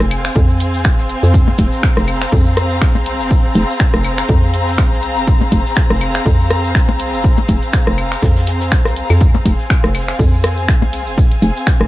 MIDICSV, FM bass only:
0, 0, Header, 1, 2, 480
1, 0, Start_track
1, 0, Key_signature, -4, "minor"
1, 0, Tempo, 491803
1, 1309, Time_signature, 4, 2, 24, 8
1, 11591, End_track
2, 0, Start_track
2, 0, Title_t, "FM bass"
2, 0, Program_c, 0, 39
2, 3, Note_on_c, 0, 29, 82
2, 288, Note_off_c, 0, 29, 0
2, 348, Note_on_c, 0, 41, 96
2, 828, Note_on_c, 0, 29, 85
2, 843, Note_off_c, 0, 41, 0
2, 1126, Note_off_c, 0, 29, 0
2, 1202, Note_on_c, 0, 41, 87
2, 1488, Note_off_c, 0, 41, 0
2, 1548, Note_on_c, 0, 29, 99
2, 1635, Note_off_c, 0, 29, 0
2, 1922, Note_on_c, 0, 29, 82
2, 2208, Note_off_c, 0, 29, 0
2, 2268, Note_on_c, 0, 41, 99
2, 2748, Note_on_c, 0, 36, 78
2, 2762, Note_off_c, 0, 41, 0
2, 3122, Note_on_c, 0, 29, 97
2, 3136, Note_off_c, 0, 36, 0
2, 3408, Note_off_c, 0, 29, 0
2, 3468, Note_on_c, 0, 29, 101
2, 3555, Note_off_c, 0, 29, 0
2, 3843, Note_on_c, 0, 29, 82
2, 4129, Note_off_c, 0, 29, 0
2, 4188, Note_on_c, 0, 41, 96
2, 4668, Note_on_c, 0, 36, 78
2, 4683, Note_off_c, 0, 41, 0
2, 5041, Note_on_c, 0, 29, 99
2, 5056, Note_off_c, 0, 36, 0
2, 5328, Note_off_c, 0, 29, 0
2, 5388, Note_on_c, 0, 29, 101
2, 5475, Note_off_c, 0, 29, 0
2, 5762, Note_on_c, 0, 29, 83
2, 6048, Note_off_c, 0, 29, 0
2, 6108, Note_on_c, 0, 41, 95
2, 6588, Note_on_c, 0, 36, 80
2, 6602, Note_off_c, 0, 41, 0
2, 6962, Note_on_c, 0, 29, 99
2, 6976, Note_off_c, 0, 36, 0
2, 7248, Note_off_c, 0, 29, 0
2, 7308, Note_on_c, 0, 29, 98
2, 7395, Note_off_c, 0, 29, 0
2, 7682, Note_on_c, 0, 29, 81
2, 7968, Note_off_c, 0, 29, 0
2, 8028, Note_on_c, 0, 41, 97
2, 8508, Note_on_c, 0, 36, 94
2, 8523, Note_off_c, 0, 41, 0
2, 8806, Note_off_c, 0, 36, 0
2, 8883, Note_on_c, 0, 41, 81
2, 9169, Note_off_c, 0, 41, 0
2, 9228, Note_on_c, 0, 29, 99
2, 9315, Note_off_c, 0, 29, 0
2, 9603, Note_on_c, 0, 29, 80
2, 9889, Note_off_c, 0, 29, 0
2, 9948, Note_on_c, 0, 41, 98
2, 10428, Note_on_c, 0, 36, 81
2, 10443, Note_off_c, 0, 41, 0
2, 10802, Note_on_c, 0, 29, 98
2, 10817, Note_off_c, 0, 36, 0
2, 11088, Note_off_c, 0, 29, 0
2, 11148, Note_on_c, 0, 29, 98
2, 11235, Note_off_c, 0, 29, 0
2, 11522, Note_on_c, 0, 29, 83
2, 11591, Note_off_c, 0, 29, 0
2, 11591, End_track
0, 0, End_of_file